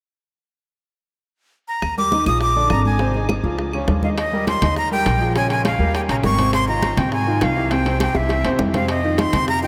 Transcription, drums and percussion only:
1.82 high bongo, high conga, claves
1.97 high conga
2.12 high bongo, high conga
2.26 high conga, claves
2.41 high bongo, high conga
2.56 high conga
2.70 high bongo, low bongo, high conga, claves
2.85 high conga
2.99 high bongo
3.14 high bongo, high conga
3.29 high bongo, high conga, claves
3.44 high bongo, high conga
3.58 high bongo, high conga
3.73 high bongo, high conga, claves
3.88 high bongo, low bongo, high conga
4.03 high conga
4.18 high bongo, high timbale
4.33 high conga
4.47 high bongo, high conga, high timbale
4.62 high conga, low conga, high timbale
4.76 high bongo, high conga
4.91 high conga
5.06 high bongo, low bongo, high conga, high timbale
5.35 high bongo, high conga, high timbale
5.50 high bongo, high conga, high timbale
5.65 high bongo, high conga, high timbale
5.80 high bongo, high conga
5.94 high bongo, high conga, high timbale
6.09 high bongo, high conga, high timbale
6.24 high bongo, low bongo, high conga
6.38 high conga, high timbale
6.53 high bongo, high conga, high timbale
6.68 high conga
6.83 high bongo, high conga, high timbale
6.97 high conga, low conga, high timbale
7.12 high bongo, high conga
7.27 high conga
7.41 high bongo, low bongo, high conga, high timbale
7.71 high bongo, high conga, high timbale
7.86 high bongo, high conga, high timbale
8.00 high bongo, high conga, high timbale
8.15 high bongo, high conga
8.29 high bongo, high conga, high timbale
8.45 high conga, high timbale
8.59 low bongo, high conga
8.74 low bongo, high conga, high timbale
8.88 high bongo, high timbale
9.04 high conga
9.18 high bongo, high conga, high timbale
9.33 high conga, low conga, high timbale
9.48 high bongo, high conga
9.64 high conga

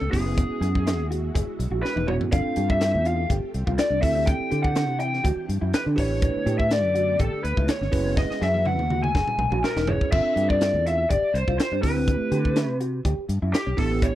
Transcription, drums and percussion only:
0.13 kick, open hi-hat
0.37 kick, closed hi-hat
0.62 closed hi-hat
0.75 kick
0.87 snare, closed hi-hat
1.12 closed hi-hat
1.35 kick, closed hi-hat
1.60 closed hi-hat
1.85 snare
1.97 high tom
2.08 mid tom
2.21 floor tom
2.32 kick, closed hi-hat
2.56 closed hi-hat
2.70 kick
2.81 snare, closed hi-hat
3.05 closed hi-hat
3.30 kick, closed hi-hat
3.54 closed hi-hat
3.67 kick
3.78 snare, closed hi-hat
4.03 kick, open hi-hat
4.27 kick, closed hi-hat
4.52 closed hi-hat
4.64 kick
4.76 snare, closed hi-hat
5.00 closed hi-hat
5.14 snare
5.25 kick, closed hi-hat
5.50 closed hi-hat
5.74 snare, closed hi-hat
5.98 kick, open hi-hat
6.22 kick, closed hi-hat
6.47 closed hi-hat
6.59 kick
6.71 snare, closed hi-hat
6.96 closed hi-hat
7.19 kick, closed hi-hat
7.45 closed hi-hat
7.57 kick
7.68 snare, closed hi-hat
7.82 snare
7.92 kick, open hi-hat
8.17 kick, snare
8.31 snare
8.42 snare
8.54 high tom
8.65 mid tom
8.79 mid tom
8.90 mid tom
9.04 mid tom
9.15 kick, snare
9.27 mid tom
9.39 mid tom
9.52 mid tom
9.64 snare
9.77 snare
9.87 floor tom
10.01 kick
10.12 kick, crash
10.37 closed hi-hat
10.50 kick
10.61 snare, closed hi-hat
10.87 snare, closed hi-hat
11.11 kick, closed hi-hat
11.35 closed hi-hat
11.48 kick
11.60 snare, closed hi-hat
11.83 kick, open hi-hat
12.08 kick, closed hi-hat
12.32 closed hi-hat
12.45 kick
12.56 snare, closed hi-hat
12.81 closed hi-hat
13.05 kick, closed hi-hat
13.29 closed hi-hat
13.54 snare, closed hi-hat
13.78 kick, open hi-hat
14.02 kick, closed hi-hat

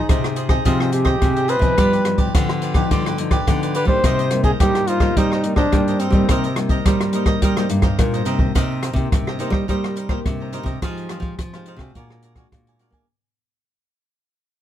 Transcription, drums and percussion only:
0.09 kick, cross-stick, closed hi-hat
0.24 cross-stick, closed hi-hat
0.36 closed hi-hat
0.49 kick, cross-stick, closed hi-hat
0.65 kick, closed hi-hat
0.80 cross-stick
0.92 closed hi-hat
1.05 kick, cross-stick
1.22 kick, cross-stick, closed hi-hat
1.36 closed hi-hat
1.49 closed hi-hat
1.62 kick, closed hi-hat
1.78 kick, cross-stick, closed hi-hat
1.93 closed hi-hat
2.05 cross-stick, closed hi-hat
2.18 kick, closed hi-hat
2.35 kick, cross-stick, closed hi-hat
2.49 cross-stick, closed hi-hat
2.62 closed hi-hat
2.74 kick, cross-stick, closed hi-hat
2.91 kick, closed hi-hat
3.06 cross-stick, closed hi-hat
3.18 closed hi-hat
3.31 kick, cross-stick, closed hi-hat
3.47 kick, cross-stick, closed hi-hat
3.63 closed hi-hat
3.75 closed hi-hat
3.88 kick
4.04 kick, cross-stick, closed hi-hat
4.19 closed hi-hat
4.31 cross-stick, closed hi-hat
4.44 kick, closed hi-hat
4.60 kick, cross-stick, closed hi-hat
4.75 cross-stick, closed hi-hat
4.87 closed hi-hat
5.00 kick, cross-stick, closed hi-hat
5.17 kick, closed hi-hat
5.32 cross-stick
5.44 closed hi-hat
5.56 kick, cross-stick
5.72 kick, cross-stick, closed hi-hat
5.88 closed hi-hat
6.00 closed hi-hat
6.12 kick, closed hi-hat
6.29 kick, cross-stick, closed hi-hat
6.44 closed hi-hat
6.56 cross-stick, closed hi-hat
6.69 kick, closed hi-hat
6.86 kick, cross-stick, closed hi-hat
7.01 cross-stick, closed hi-hat
7.13 closed hi-hat
7.26 kick, cross-stick, closed hi-hat
7.42 kick, closed hi-hat
7.57 cross-stick, closed hi-hat
7.69 closed hi-hat
7.82 kick, cross-stick, closed hi-hat
7.99 kick, cross-stick, closed hi-hat
8.14 closed hi-hat
8.26 closed hi-hat
8.39 kick
8.55 kick, cross-stick, closed hi-hat
8.83 cross-stick, closed hi-hat
8.96 kick, closed hi-hat
9.12 kick, cross-stick, closed hi-hat
9.27 cross-stick
9.40 closed hi-hat
9.52 kick, cross-stick
9.69 kick, closed hi-hat
9.84 cross-stick, closed hi-hat
9.97 closed hi-hat
10.09 kick, cross-stick
10.26 kick, cross-stick, closed hi-hat
10.53 closed hi-hat
10.66 kick, closed hi-hat
10.82 kick, cross-stick, closed hi-hat
10.97 closed hi-hat
11.09 cross-stick, closed hi-hat
11.22 kick, closed hi-hat
11.39 kick, cross-stick, closed hi-hat
11.54 cross-stick, closed hi-hat
11.66 closed hi-hat
11.79 kick, cross-stick, closed hi-hat
11.95 kick, closed hi-hat
12.10 cross-stick
12.22 closed hi-hat
12.36 kick, cross-stick, closed hi-hat
12.52 kick, cross-stick, closed hi-hat
12.67 closed hi-hat
12.79 closed hi-hat
12.92 kick, closed hi-hat

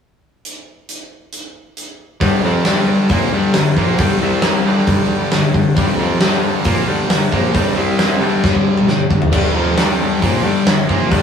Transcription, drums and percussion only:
0.45 closed hi-hat
0.89 closed hi-hat
1.33 closed hi-hat
1.77 closed hi-hat
2.21 kick, open hi-hat
2.65 snare, open hi-hat
2.76 snare
3.09 kick, open hi-hat
3.54 snare, open hi-hat
3.77 kick
3.98 kick, open hi-hat
4.42 snare, open hi-hat
4.87 kick, open hi-hat
5.32 snare, open hi-hat
5.54 kick
5.77 kick, open hi-hat
6.21 snare, open hi-hat
6.31 snare
6.64 kick, open hi-hat
7.10 snare, open hi-hat
7.32 kick
7.55 kick, open hi-hat
7.99 snare, open hi-hat
8.44 kick, snare
8.55 kick
8.77 mid tom
8.88 snare
9.11 kick
9.22 floor tom
9.32 kick, crash
9.78 snare, open hi-hat
10.22 kick, open hi-hat
10.67 snare, open hi-hat
10.89 kick
11.11 kick, open hi-hat

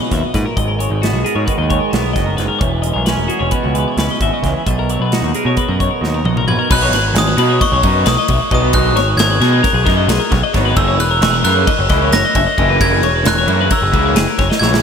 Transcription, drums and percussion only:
0.11 kick, snare, closed hi-hat
0.34 kick, snare, closed hi-hat
0.57 kick, closed hi-hat
0.80 closed hi-hat
1.03 snare, closed hi-hat
1.26 closed hi-hat
1.48 kick, closed hi-hat
1.70 kick, closed hi-hat
1.93 snare, closed hi-hat
2.16 kick, snare, closed hi-hat
2.38 snare, closed hi-hat
2.61 kick, closed hi-hat
2.83 closed hi-hat
3.06 snare, closed hi-hat
3.30 closed hi-hat
3.51 kick, closed hi-hat
3.75 closed hi-hat
3.98 snare, closed hi-hat
4.21 kick, closed hi-hat
4.44 kick, snare, closed hi-hat
4.67 kick, closed hi-hat
4.89 closed hi-hat
5.12 snare, closed hi-hat
5.34 closed hi-hat
5.57 kick, closed hi-hat
5.80 kick, closed hi-hat
6.04 snare
6.25 high tom
6.37 mid tom
6.48 mid tom
6.71 kick, crash
6.93 snare, ride
7.15 snare, ride
7.38 ride
7.61 kick, snare, ride
7.83 kick, ride
8.06 snare, ride
8.28 kick, ride
8.51 kick, ride
8.73 kick, ride
8.96 snare, ride
9.19 snare, ride
9.42 snare, ride
9.64 kick, snare, ride
9.87 kick, snare, ride
10.09 snare, ride
10.32 kick, snare, ride
10.54 kick, snare, ride
10.76 kick, ride
11.00 ride
11.22 snare, ride
11.45 snare, ride
11.67 kick, ride
11.89 kick, snare, ride
12.12 snare, ride
12.35 kick, ride
12.58 kick, ride
12.81 kick, ride
13.03 ride
13.25 snare, ride
13.48 ride
13.71 kick, ride
13.93 kick, ride
14.16 snare, ride
14.38 kick, snare, ride
14.52 snare
14.62 snare
14.74 snare

